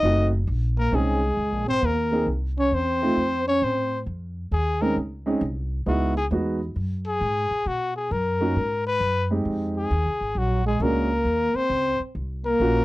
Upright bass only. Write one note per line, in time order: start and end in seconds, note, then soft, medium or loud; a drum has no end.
0.03 0.46 F#1 medium
0.47 0.91 A#1 medium
0.92 1.36 C2 medium
1.37 1.52 C#2 medium
1.52 1.66 A#1 medium
1.67 1.81 G#1 medium
1.82 2.26 D#2 medium
2.26 2.70 C2 medium
2.72 3.15 E2 medium
3.17 3.60 F2 medium
3.62 4.05 A2 medium
4.06 4.50 F2 medium
4.51 4.95 D#2 medium
4.96 5.40 C#2 medium
5.41 5.85 C2 medium
5.86 6.30 C#2 medium
6.31 6.74 E2 medium
6.76 7.19 F#2 medium
7.21 7.48 G#2 medium
7.51 muted upright bass stroke soft
7.66 8.09 B2 medium
8.11 8.54 F#2 medium
8.56 8.99 G#2 medium
9.00 9.44 F#2 medium
9.91 10.07 D#2 medium
10.06 10.20 C2 medium
10.21 10.34 G#1 medium
10.35 10.79 A#1 medium
10.80 11.24 C#2 medium
11.25 11.52 D#2 medium
11.54 muted upright bass stroke soft
11.70 11.97 C#2 medium
12.00 muted upright bass stroke soft
12.15 12.59 C2 medium
12.60 12.85 A#1 medium